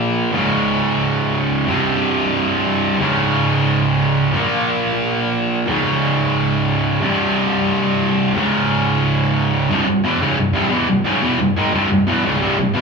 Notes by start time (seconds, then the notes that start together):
Already playing: A#2 F3 A#3
0.32 C#2 G#2 C#3
1.66 C2 G2 C3
2.98 C#2 G#2 C#3
4.33 A#2 F3 A#3
5.67 C#2 G#2 C#3
7.01 C2 G2 C3
8.34 C#2 G#2 C#3
9.70 C2 G2 C3
9.87 C2 G2
10.04 E2 B2 E3
10.21 C#2 G#2 C#3
10.38 C2 G2
10.53 C2 G2 C3
10.71 E2 B2 E3
10.88 C2 G2
11.05 C#2 G#2 C#3
11.22 E2 B2 E3
11.39 C2 G2
11.57 G#2 D#3 G#3
11.73 C2 G2 C3
11.91 C2 G2
12.07 E2 B2 E3
12.24 C#2 G#2 C#3
12.40 C2 G2 C3
12.58 C2 G2
12.74 E2 B2 E3